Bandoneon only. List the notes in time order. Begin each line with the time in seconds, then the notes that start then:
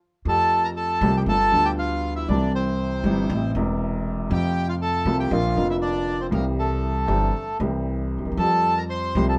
0.28 A4 A5
0.64 A#4 A#5
0.76 A4 A5
1.17 G4 G5
1.29 A4 A5
1.65 G4 G5
1.79 F4 F5
2.16 E4 E5
2.29 D4 D5
2.55 C4 C5
4.33 G4 G5
4.69 F4 F5
4.82 A4 A5
5.20 G4 G5
5.32 F4 F5
5.70 E4 E5
5.81 D4 D5
6.21 C4 C5
6.34 A#3 A#4
6.59 A3 A4
8.38 A4 A5
8.77 A#4 A#5
8.89 C5 C6
9.28 A4 A5